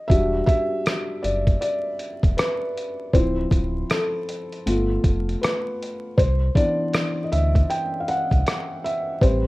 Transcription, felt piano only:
Already playing: D#5
0.08 G3 D4 F#4 E5
0.46 E5
1.23 D5
1.61 D5
2.37 B4
3.13 F3 C4 E4 C5
3.90 A4
4.66 A3 B3 F4
5.41 B4
6.17 C5
6.55 E3 B3 D4 D5
7.24 D#5
7.32 E5
7.70 G5
8.00 F5
8.08 F#5
8.84 E5
9.21 G3 C4 B4 C5

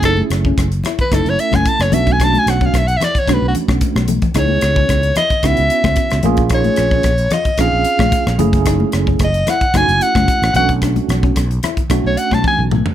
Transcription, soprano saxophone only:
0.05 A4
1.01 B4
1.14 A4
1.29 C#5
1.40 E5
1.55 G#5
1.68 A5
1.82 C#5
1.94 E5
2.12 G#5
2.23 A5
2.39 G#5
2.50 F#5
2.65 F5
2.78 E5
2.87 F#5
2.97 E5
3.04 D5
3.19 C#5
3.33 B4
3.48 F#4
4.39 C#5
5.17 D#5
5.46 E5
6.54 C#5
7.33 D#5
7.60 F5
9.24 D#5
9.50 F#5
9.77 G#5
10.02 F#5
10.56 F#5
12.07 C#5
12.18 F#5
12.34 A5
12.47 G#5

